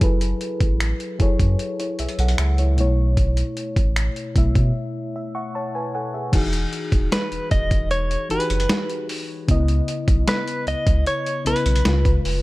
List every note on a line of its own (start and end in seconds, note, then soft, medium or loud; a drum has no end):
0.00 0.34 F#1 loud
0.00 0.82 F#3 medium
0.00 0.82 E4 medium
0.00 0.83 G#4 medium
0.00 0.83 A4 medium
0.00 0.84 B4 medium
0.00 kick loud
0.00 closed hi-hat medium
0.21 closed hi-hat medium
0.41 closed hi-hat medium
0.60 0.93 A1 medium
0.60 kick medium
0.60 closed hi-hat soft
0.80 finger snap loud
0.80 closed hi-hat medium
1.00 closed hi-hat medium
1.19 1.36 F#1 medium
1.19 2.14 F#3 medium
1.19 1.59 E4 medium
1.19 1.60 G#4 medium
1.19 1.60 A4 medium
1.19 1.60 C#5 medium
1.19 kick medium
1.19 closed hi-hat soft
1.40 1.56 F#2 medium
1.40 kick medium
1.40 closed hi-hat medium
1.59 closed hi-hat medium
1.80 1.98 E4 medium
1.80 1.98 C#5 medium
1.80 closed hi-hat soft
1.99 2.07 B1 soft
1.99 2.18 G#4 medium
1.99 2.18 E5 medium
1.99 closed hi-hat medium
2.09 closed hi-hat medium
2.18 2.35 B1 loud
2.18 2.38 A4 medium
2.18 2.38 F#5 medium
2.18 closed hi-hat medium
2.28 closed hi-hat medium
2.38 2.79 C#2 loud
2.38 2.58 G#4 medium
2.38 2.57 E5 medium
2.38 finger snap loud
2.38 closed hi-hat medium
2.58 2.78 E4 medium
2.58 2.79 C#5 medium
2.58 closed hi-hat medium
2.77 3.43 B1 medium
2.77 4.04 B2 medium
2.77 4.04 A3 medium
2.77 4.05 E4 medium
2.77 4.05 C#5 medium
2.77 closed hi-hat medium
3.17 kick loud
3.17 closed hi-hat medium
3.37 closed hi-hat medium
3.57 closed hi-hat medium
3.76 4.09 A1 medium
3.76 kick medium
3.76 closed hi-hat soft
3.96 finger snap medium
3.96 closed hi-hat medium
4.16 closed hi-hat medium
4.35 4.52 B1 medium
4.35 5.30 B2 medium
4.35 5.31 A3 medium
4.35 5.31 E4 medium
4.35 5.15 E5 medium
4.35 kick medium
4.35 closed hi-hat medium
4.55 4.72 B2 medium
4.55 kick medium
4.55 closed hi-hat medium
5.16 5.33 E5 medium
5.35 5.54 E5 medium
5.35 5.53 F#5 medium
5.35 5.53 C#6 medium
5.55 5.74 C#5 medium
5.55 5.73 A5 medium
5.75 5.93 B4 medium
5.75 5.93 G#5 medium
5.95 6.13 A4 medium
5.95 6.13 F#5 medium
5.95 6.31 G#5 medium
6.14 6.34 G#4 medium
6.14 6.51 E5 medium
6.32 6.65 E1 loud
6.32 7.41 E3 medium
6.32 7.41 D#4 medium
6.32 7.42 F#4 medium
6.32 7.42 G#4 loud
6.32 kick loud
6.32 closed hi-hat medium
6.32 crash medium
6.53 closed hi-hat medium
6.73 closed hi-hat medium
6.92 7.08 D#1 medium
6.92 kick loud
6.92 closed hi-hat soft
7.12 7.51 B4 medium
7.12 snare loud
7.12 closed hi-hat medium
7.32 7.39 E1 soft
7.32 closed hi-hat soft
7.51 8.16 E1 medium
7.51 7.91 D#5 loud
7.51 kick medium
7.51 closed hi-hat soft
7.71 kick loud
7.71 closed hi-hat medium
7.91 8.28 C#5 loud
7.91 closed hi-hat medium
8.11 closed hi-hat medium
8.29 8.38 F#1 soft
8.29 9.11 E3 medium
8.29 9.12 D#4 medium
8.29 9.12 F#4 medium
8.29 8.38 G4 medium
8.29 9.06 B4 medium
8.29 closed hi-hat medium
8.39 9.16 G#4 medium
8.39 closed hi-hat medium
8.50 8.66 F#1 loud
8.50 closed hi-hat medium
8.60 closed hi-hat medium
8.70 snare loud
8.70 closed hi-hat medium
8.90 closed hi-hat medium
9.09 open hi-hat medium
9.48 9.81 C#2 loud
9.48 10.56 C#3 medium
9.48 10.57 B3 medium
9.48 10.57 E4 medium
9.48 10.58 D#5 loud
9.48 kick loud
9.48 closed hi-hat medium
9.68 closed hi-hat medium
9.88 closed hi-hat medium
10.08 10.24 B1 medium
10.08 kick loud
10.08 closed hi-hat soft
10.28 10.65 B4 medium
10.28 snare loud
10.28 closed hi-hat medium
10.48 closed hi-hat medium
10.67 10.75 C#2 soft
10.67 11.07 D#5 loud
10.67 closed hi-hat medium
10.87 11.03 C#2 medium
10.87 kick medium
10.87 closed hi-hat medium
11.06 11.44 C#5 loud
11.06 closed hi-hat medium
11.26 closed hi-hat soft
11.45 11.54 B1 medium
11.45 11.83 C#3 medium
11.45 11.85 B3 medium
11.45 11.86 E4 medium
11.45 12.21 B4 medium
11.45 11.87 B4 medium
11.45 closed hi-hat medium
11.56 closed hi-hat medium
11.66 11.82 B1 loud
11.66 closed hi-hat medium
11.76 closed hi-hat medium
11.84 12.18 C#2 loud
11.84 12.42 C#3 medium
11.84 12.42 G#3 medium
11.84 12.42 F4 medium
11.84 12.42 B4 medium
11.84 snare loud
11.84 closed hi-hat medium
12.05 kick loud
12.05 closed hi-hat medium
12.25 12.42 F1 medium
12.25 open hi-hat medium